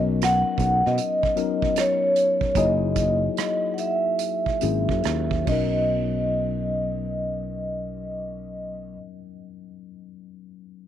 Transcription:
0.00 0.42 B1 medium
0.00 0.84 F#3 medium
0.00 0.84 B3 medium
0.00 0.84 C#4 medium
0.00 0.85 D#4 medium
0.00 0.85 A#4 medium
0.22 0.87 F#5 loud
0.22 cross-stick medium
0.22 closed hi-hat medium
0.58 0.81 B1 medium
0.58 kick medium
0.58 closed hi-hat medium
0.86 0.98 B2 medium
0.86 1.80 D#5 medium
0.86 cross-stick soft
0.98 closed hi-hat medium
1.23 kick medium
1.23 cross-stick soft
1.36 2.44 F#3 medium
1.36 2.44 B3 medium
1.36 2.44 C#4 medium
1.36 2.44 D#4 medium
1.36 2.45 A#4 medium
1.36 closed hi-hat medium
1.62 kick medium
1.62 cross-stick soft
1.76 2.59 C#5 medium
1.76 cross-stick medium
1.76 closed hi-hat medium
2.16 closed hi-hat medium
2.41 kick medium
2.55 3.27 F#1 medium
2.55 4.04 F#3 medium
2.55 4.04 A#3 medium
2.55 4.04 D#4 medium
2.55 4.04 E4 medium
2.55 4.05 G#4 loud
2.55 3.76 D#5 medium
2.55 kick loud
2.55 closed hi-hat medium
2.96 kick medium
2.96 closed hi-hat medium
3.37 cross-stick medium
3.37 closed hi-hat medium
3.74 3.78 F#5 medium
3.78 5.44 E5 medium
3.78 closed hi-hat soft
4.19 closed hi-hat medium
4.46 kick medium
4.46 cross-stick soft
4.61 4.86 G#1 medium
4.61 5.39 F#3 medium
4.61 5.40 A#3 medium
4.61 5.40 C#4 medium
4.61 5.40 E4 medium
4.61 5.40 G#4 medium
4.61 closed hi-hat medium
4.89 5.03 F#2 medium
4.89 kick medium
4.89 cross-stick soft
5.04 5.43 D#2 medium
5.04 cross-stick medium
5.04 closed hi-hat medium
5.31 kick medium
5.45 8.97 B1 medium
5.45 8.94 F#3 medium
5.45 8.95 B3 medium
5.45 8.97 C#4 medium
5.45 8.97 D#5 medium
5.45 kick medium
5.45 crash medium
5.50 8.99 D#4 medium
5.50 9.01 A#4 medium

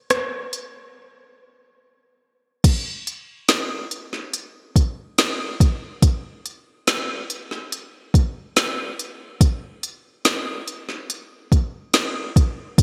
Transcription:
0.10 cross-stick medium
0.10 closed hi-hat medium
0.53 closed hi-hat medium
2.64 kick loud
2.64 closed hi-hat loud
2.64 crash medium
3.07 closed hi-hat medium
3.48 snare loud
3.48 closed hi-hat medium
3.91 closed hi-hat medium
4.13 snare soft
4.34 closed hi-hat medium
4.76 kick medium
4.76 closed hi-hat medium
5.18 snare loud
5.18 closed hi-hat medium
5.60 kick loud
5.60 closed hi-hat medium
6.02 kick loud
6.02 closed hi-hat medium
6.46 closed hi-hat medium
6.87 snare loud
6.87 closed hi-hat loud
7.30 closed hi-hat medium
7.51 snare soft
7.72 closed hi-hat loud
8.14 kick medium
8.14 closed hi-hat medium
8.56 snare loud
8.56 closed hi-hat medium
8.99 closed hi-hat medium
9.41 kick loud
9.41 closed hi-hat medium
9.83 closed hi-hat medium
10.25 snare loud
10.25 closed hi-hat medium
10.68 closed hi-hat medium
10.89 snare soft
11.10 closed hi-hat loud
11.52 kick medium
11.52 closed hi-hat medium
11.94 snare loud
11.94 closed hi-hat medium
12.36 kick loud
12.36 closed hi-hat medium
12.78 kick loud
12.78 closed hi-hat loud

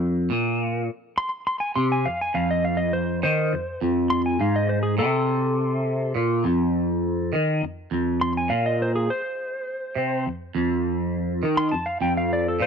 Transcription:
0.00 0.29 F2 medium
0.30 0.87 A#2 loud
1.18 1.32 C6 loud
1.47 1.60 C6 medium
1.60 1.75 G#5 medium
1.75 2.04 C3 medium
1.75 1.90 C6 medium
1.92 2.05 G#5 medium
2.06 2.29 F2 medium
2.06 2.20 F5 medium
2.21 2.35 G#5 medium
2.34 3.21 F2 medium
2.34 2.49 F5 medium
2.51 2.64 D#5 medium
2.65 2.79 F5 medium
2.77 2.92 D#5 loud
2.93 3.22 C5 loud
3.23 3.51 D#3 loud
3.23 3.80 C5 loud
3.53 3.76 F2 medium
3.81 4.39 F2 loud
4.10 4.25 C6 medium
4.26 4.40 G#5 medium
4.40 4.98 G#2 loud
4.40 4.55 F5 medium
4.56 4.69 D#5 medium
4.69 4.82 C5 medium
4.83 4.98 G#4 medium
4.98 6.14 C3 loud
4.98 6.12 A4 loud
6.15 6.44 A#2 loud
6.44 7.32 F2 loud
7.33 7.61 D#3 loud
7.62 7.86 F2 medium
7.91 8.49 F2 loud
8.21 8.35 C6 medium
8.37 8.51 G#5 medium
8.49 9.07 A#2 medium
8.49 8.64 F5 loud
8.66 8.80 D#5 medium
8.82 8.95 C5 medium
8.96 9.09 G#4 medium
9.10 10.23 C5 loud
9.95 10.25 C3 medium
10.26 10.50 F2 medium
10.55 11.42 F2 loud
11.43 11.71 D#3 loud
11.57 11.71 C6 loud
11.71 11.96 F2 medium
11.71 11.86 A5 medium
11.86 12.01 F5 medium
12.01 12.59 F2 medium
12.01 12.16 G5 medium
12.17 12.31 F5 medium
12.33 12.46 D5 medium
12.48 12.61 A4 medium
12.60 12.67 A#2 medium
12.60 12.67 C5 loud

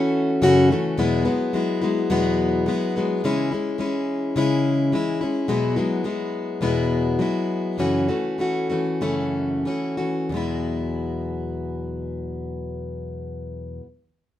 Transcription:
0.00 0.42 E3 medium
0.00 0.42 A3 medium
0.00 0.42 C#4 medium
0.00 0.42 F#4 medium
0.00 0.39 E5 medium
0.42 0.70 F#2 medium
0.42 0.70 C#3 medium
0.42 0.71 E3 medium
0.42 0.71 A3 medium
0.42 0.71 C#4 medium
0.42 0.69 F#4 medium
0.71 0.98 E3 soft
0.71 0.98 A3 medium
0.71 0.99 C#4 medium
0.71 0.99 F#4 medium
0.97 1.26 E2 medium
0.97 1.27 B2 medium
0.97 1.26 F#3 medium
0.97 1.25 G#3 medium
0.97 1.24 B3 medium
0.97 1.23 E4 medium
1.25 1.52 F#3 soft
1.25 1.53 G#3 soft
1.25 1.54 B3 medium
1.25 1.54 E4 soft
1.53 1.82 F#3 soft
1.53 1.82 G#3 medium
1.53 1.81 B3 medium
1.53 1.80 E4 medium
1.81 2.09 F#3 soft
1.81 2.10 G#3 soft
1.81 2.10 B3 soft
1.81 2.10 E4 soft
2.10 2.67 E2 medium
2.10 2.67 B2 medium
2.10 2.65 F#3 medium
2.10 2.67 G#3 medium
2.10 2.67 B3 medium
2.10 2.69 E4 medium
2.66 2.95 F#3 medium
2.66 2.96 G#3 medium
2.66 2.96 B3 medium
2.66 2.95 E4 medium
2.96 3.23 F#3 soft
2.96 3.24 G#3 soft
2.96 3.24 B3 soft
2.96 3.24 E4 soft
3.24 3.52 C#3 medium
3.24 3.52 E3 medium
3.24 3.52 G#3 medium
3.24 3.52 C#4 medium
3.24 3.50 E4 medium
3.51 3.78 G#3 soft
3.51 3.79 C#4 soft
3.51 3.80 E4 soft
3.78 4.36 E3 medium
3.78 4.36 G#3 medium
3.78 4.36 C#4 medium
3.78 4.37 E4 medium
4.36 4.92 C#3 medium
4.36 4.92 E3 medium
4.36 4.92 G#3 medium
4.36 4.93 C#4 medium
4.36 4.95 E4 medium
4.92 5.20 E3 soft
4.92 5.21 G#3 medium
4.92 5.22 C#4 medium
4.92 5.20 E4 medium
5.21 5.48 G#3 soft
5.21 5.49 C#4 soft
5.21 5.49 E4 soft
5.48 5.76 E2 medium
5.48 5.77 B2 medium
5.48 5.77 F#3 medium
5.48 5.77 G#3 medium
5.48 5.76 B3 medium
5.48 5.75 E4 medium
5.76 6.03 F#3 soft
5.76 6.04 G#3 soft
5.76 6.04 B3 soft
5.76 6.05 E4 soft
6.04 6.62 F#3 medium
6.04 6.61 G#3 medium
6.04 6.62 B3 medium
6.04 6.63 E4 soft
6.61 7.19 E2 medium
6.61 7.20 B2 medium
6.61 7.18 F#3 medium
6.61 7.19 G#3 medium
6.61 7.20 B3 medium
6.61 7.21 E4 medium
7.19 7.79 F#3 medium
7.19 7.79 G#3 medium
7.19 7.79 B3 medium
7.19 7.79 E4 medium
7.78 8.08 F#2 medium
7.78 8.09 C#3 medium
7.78 8.09 E3 medium
7.78 8.09 A3 medium
7.78 8.08 C#4 medium
7.78 8.07 F#4 medium
8.08 8.37 E3 soft
8.08 8.38 A3 soft
8.08 8.39 C#4 soft
8.08 8.39 F#4 soft
8.38 8.69 E3 soft
8.38 8.70 A3 soft
8.38 8.69 C#4 soft
8.38 8.68 F#4 medium
8.70 9.01 E3 soft
8.70 9.01 A3 soft
8.70 9.01 C#4 soft
8.70 9.01 F#4 soft
9.01 9.65 F#2 medium
9.01 9.65 C#3 medium
9.01 9.64 E3 medium
9.01 9.65 A3 medium
9.01 9.66 C#4 medium
9.01 9.66 F#4 medium
9.65 9.98 E3 soft
9.65 9.98 A3 soft
9.65 9.97 C#4 medium
9.65 9.96 F#4 medium
9.97 10.32 E3 soft
9.97 10.32 A3 soft
9.97 10.31 C#4 soft
9.97 10.31 F#4 soft
10.29 13.79 E2 medium
10.29 13.80 B2 soft
10.29 13.82 F#3 medium
10.34 13.84 G#3 medium
10.34 13.85 B3 medium
10.34 13.87 E4 medium

